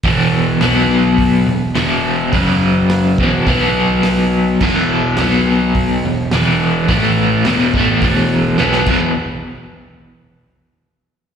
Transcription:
<<
  \new Staff \with { instrumentName = "Overdriven electric guitar" } { \clef bass \time 4/4 \key b \dorian \tempo 4 = 106 <e, b, e>4 <b, fis b>4. <e, b,>8 <e, b, e>4 | <fis, cis fis>4. <e, b, e>8 <b, fis b>2 | <e, b, e>4 <b, fis b>4. <e, b,>8 <e, b, e>4 | <a, e a>4 <e, b, e>8 <a, e a>8 <e, b, e>4 <b, fis b>8 <e, b, e>8 |
r1 | }
  \new Staff \with { instrumentName = "Picked electric bass" } { \clef bass \time 4/4 \key b \dorian e,,4 b,,4. e,,8 e,,4 | fis,,4. e,,8 b,,2 | e,,4 b,,4. e,,8 e,,4 | a,,4 e,,8 a,,8 e,,4 b,,8 e,,8 |
r1 | }
  \new DrumStaff \with { instrumentName = "Drums" } \drummode { \time 4/4 <hho bd>4 <hho sn>4 <hho bd>4 <hho sn>4 | <hho bd>4 <hho sn>8 bd8 <hho bd>4 <hho sn>4 | <cymc bd>4 <hho sn>4 <hho bd>4 <hho sn>4 | <hho bd>4 <hho sn>8 bd8 <hho bd>4 sn16 sn16 <cymc bd>8 |
r4 r4 r4 r4 | }
>>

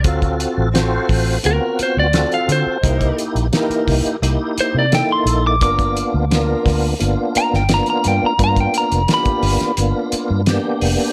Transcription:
<<
  \new Staff \with { instrumentName = "Lead electric guitar" } { \time 4/4 \key d \dorian \tempo 4 = 86 r2 bes'8 c''16 d''8 eis''16 c''8~ | c''8 r2 c''16 d''16 g''16 c'''8 d'''16 | d'''2 r8 ais''16 g''16 ais''16 ais''16 g''16 ais''16 | ais''16 g''16 ais''8 b''2 r4 | }
  \new Staff \with { instrumentName = "Horn section" } { \time 4/4 \key d \dorian <fis c' eis''>8 r8 <c' a'>4 r2 | <e bes' dis''>8 r8 <e bes'>4 r2 | <d' f' ais'>8 r8 <f' ais'>4 r2 | <d' f' ais'>8 r8 <f' g'>4 r2 | }
  \new Staff \with { instrumentName = "Tonewheel organ" } { \time 4/4 \key d \dorian <c' eis' fis' a'>4 <c' eis' fis' c''>4 <b c' eis' fis'>4 <c' eis' fis' a'>4 | <bes dis' e' g'>4 <bes dis' e' g'>4 <bes dis' e' g'>4 <bes dis' e' a'>4 | <ais b d' f'>4 <ais b d' f'>4 <ais b d' f'>4 <ais b d' f'>4 | <ais b d' f'>4 <ais b d' f'>4 <ais b d' f'>4 <ais b d' g'>4 | }
  \new Staff \with { instrumentName = "Fingered electric bass" } { \clef bass \time 4/4 \key d \dorian d,8. a,,8. a,,8 d,16 r8 d,8 r16 d16 r16 | c,8 r16 bes,,16 r8 c,16 r16 c,16 r8 c8 r16 bes,,8 | g,,8. d,8. d,8 g,,16 r8 g,,8 r16 g,16 r16 | g,8 r16 f,,16 r8 g,,16 r16 g,,16 r8 g,8 r16 f,,16 r16 | }
  \new DrumStaff \with { instrumentName = "Drums" } \drummode { \time 4/4 <hh bd>16 <hh bd>16 hh8 <hh sn>8 <hho bd>8 hh8 hh8 <hh sn>16 hh16 hh8 | <hh bd>16 <hh bd>16 hh16 hh16 <hh sn>16 hh16 <hho bd sn>16 hh16 hh8 hh8 <hh sn>8 hh8 | <hh bd>16 <hh bd>16 hh8 <hh sn>8 <hho bd sn>8 hh8 hh16 sn16 <hh sn>16 hh16 <hh sn>8 | <hh bd>16 <hh bd>16 hh16 hh16 <hh sn>16 <hh bd>16 hho16 <hh sn>16 hh8 hh8 <hh sn>8 hho8 | }
>>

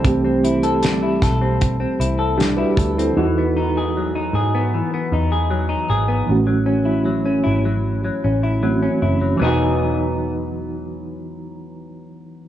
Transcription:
<<
  \new Staff \with { instrumentName = "Clean electric guitar" } { \time 4/4 \key e \major \tempo 4 = 77 <g c' e' a'>16 c'16 e'16 a'16 g16 e'16 a'16 c'8 c'16 e'16 a'16 g16 e'16 a'16 c'16 | e16 b16 dis'16 gis'16 fis16 dis'16 gis'16 b16 e16 b16 dis'16 gis'16 fis16 dis'16 gis'16 b16 | r16 fis16 cis'16 e'16 fis16 cis'16 e'16 fis8 fis16 cis'16 e'16 fis16 cis'16 e'16 fis16 | <e fis b dis' gis'>1 | }
  \new Staff \with { instrumentName = "Reed electric piano" } { \time 4/4 \key e \major << { r2. <d' g'>16 <fis' b'>8 <e' a'>16~ | <e' a'>16 r2. r8. | r1 | r1 | } \\ { <e a c' g'>1 | <e gis dis' fis'>1 | <e a cis' fis'>2. <e a c' cis' fis'>4 | <e gis dis' fis'>1 | } >> }
  \new Staff \with { instrumentName = "Picked electric bass" } { \clef bass \time 4/4 \key e \major c,4. b,,4 c,4 d,8 | e,4. gis,8. r16 e,4 gis,,8 | a,,4. gis,,4 a,,4 fis,,8 | e,,1 | }
  \new DrumStaff \with { instrumentName = "Drums" } \drummode { \time 4/4 <hh bd>8 hh16 hh16 <hh sn>8 <hh bd sn>8 <hh bd>8 hh8 <hh sn>8 <hh bd>16 hh16 | r4 r4 r4 r4 | r4 r4 r4 r4 | r4 r4 r4 r4 | }
>>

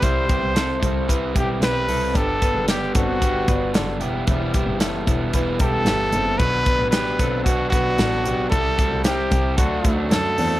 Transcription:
<<
  \new Staff \with { instrumentName = "Trumpet" } { \time 4/4 \key c \lydian \tempo 4 = 113 c''2 r8 g'8 b'4 | a'4 g'8 fis'2 r8 | r2 r8 a'4. | b'4 b'4 fis'8 fis'4. |
a'4 g'4 fis'4 a'4 | }
  \new Staff \with { instrumentName = "Clean electric guitar" } { \time 4/4 \key c \lydian <g e'>8 <b g'>8 <c' a'>4 <e' b'>8 <b g'>4 <c' a'>8 | <b g'>8 <d' b'>8 <b g'>8 <c' a'>8 <b g'>8 <d' b'>8 <d' a'>8 <b g'>8 | <g e'>8 <b g'>8 <e' a'>4 <e' b'>8 <b g'>4 <c' a'>8 | <b fis'>8 <d' b'>8 <b g'>8 <c' a'>8 <b fis'>8 <d' b'>8 <d' a'>8 <b g'>8 |
<g e'>8 <a fis'>8 <c' g'>4 <d' a'>8 <a fis'>4 <c' a'>8 | }
  \new Staff \with { instrumentName = "Overdriven electric guitar" } { \time 4/4 \key c \lydian <c g c' e'>8 <g c' e'>8 <c g c' e'>8 <g c' e'>8 <c g c' e'>8 <g c' e'>8 <c g c' e'>8 <g c' e'>8 | <g, d g b d'>8 <g b d'>8 <d g b d'>8 <g b d'>8 <g, d g b d'>8 <g b d'>8 <d g b d'>8 <g b e'>8 | <e g b e'>8 <g b e'>8 <e g b e'>8 <g b e'>8 <e g b e'>8 <g b e'>8 <e g b e'>8 <g b e'>8 | <b, fis b d'>8 <fis b d'>8 <b, fis b d'>8 <fis b d'>8 <b, fis b d'>8 <fis b d'>8 <b, fis b d'>8 <fis b d'>8 |
<c g c' e'>8 <g c' e'>8 <c g c' e'>8 <g c' e'>8 <d fis a d'>8 <fis a d'>8 <d fis a d'>8 <fis a d'>8 | }
  \new Staff \with { instrumentName = "Double bass" } { \clef bass \time 4/4 \key c \lydian c,8. c,8 r16 c,4 b,,8 b,,8 c,8 | g,,8. fis,,8 r16 g,,4 g,,8 fis,,8 e,,8 | e,,8. fis,,8 r16 e,,4 e,,8 g,,8 fis,,8 | b,,8. a,,8 r16 b,,4 b,,8 a,,8 b,,8 |
c,8. c,8 r16 c,8 d,8 d,8 fis,8 e,8 | }
  \new DrumStaff \with { instrumentName = "Drums" } \drummode { \time 4/4 <hh bd>8 <hh bd>8 <hh sn>8 <hh bd>8 <hh bd>8 <hh bd>8 <hh sn>8 hho8 | <hh bd>8 <hh bd>8 <hh sn>8 <hh bd>8 <hh bd>8 <hh bd>8 <hh sn>8 hh8 | <hh bd>8 <hh bd>8 <hh sn>8 <hh bd>8 <hh bd>8 <hh bd>8 <hh sn>8 hh8 | <hh bd>8 <hh bd>8 <hh sn>8 <hh bd>8 <hh bd>8 <hh bd>8 <hh sn>8 hh8 |
<hh bd>8 <hh bd>8 <hh sn>8 <hh bd>8 <hh bd>8 <hh bd>8 <hh sn>8 hho8 | }
>>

